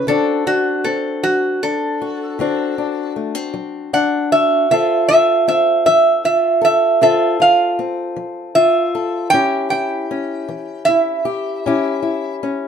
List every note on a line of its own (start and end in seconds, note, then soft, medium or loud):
0.07 0.77 D3 medium
0.07 0.85 C4 medium
0.07 0.46 D4 medium
0.07 2.00 F#4 medium
0.07 0.46 A4 medium
0.47 1.63 D4 medium
0.47 0.85 F#4 medium
0.84 2.40 C4 medium
0.84 1.23 A4 medium
1.23 1.93 F#3 medium
1.23 1.61 F#4 medium
1.63 2.40 D4 medium
1.63 3.13 A4 medium
2.02 2.40 F#4 medium
2.39 3.08 D3 medium
2.39 3.16 C4 medium
2.39 2.77 D4 medium
2.39 4.31 F#4 medium
2.78 3.92 D4 medium
3.16 3.35 A3 soft
3.35 4.70 C4 medium
3.54 4.24 F#3 medium
3.93 4.66 D4 medium
3.93 4.31 F#5 medium
4.32 4.71 F#4 medium
4.32 4.69 E5 medium
4.71 5.40 D3 medium
4.71 5.46 C4 medium
4.71 5.09 F4 medium
4.71 6.61 A4 medium
4.71 5.07 E5 loud
5.08 6.23 F4 medium
5.08 5.46 E5 loud
5.48 7.01 C4 medium
5.48 5.85 E5 medium
5.86 6.55 F3 medium
5.86 6.23 E5 medium
6.25 7.01 F4 medium
6.25 6.62 E5 medium
6.61 7.02 A4 medium
6.61 7.01 E5 medium
7.01 7.70 D3 medium
7.01 7.78 C4 medium
7.01 7.39 F4 medium
7.01 8.94 A4 medium
7.01 7.39 E5 medium
7.40 8.54 F4 medium
7.40 7.78 F5 medium
7.79 9.28 C4 medium
8.16 8.86 F3 medium
8.55 9.28 F4 medium
8.55 9.30 E5 loud
8.95 9.34 A4 medium
9.30 10.01 A2 medium
9.30 10.10 C#4 medium
9.30 9.72 E4 medium
9.30 9.68 G5 loud
9.35 11.25 G4 medium
9.70 10.88 E4 medium
9.70 10.82 G5 medium
10.11 11.66 C#4 medium
10.49 11.17 E3 medium
10.85 11.67 E4 medium
10.85 12.35 E5 loud
11.25 11.67 G4 medium
11.66 12.34 A2 medium
11.66 12.41 C#4 medium
11.66 12.02 E4 medium
11.66 12.68 G4 medium
12.03 12.68 E4 medium
12.43 12.68 C#4 medium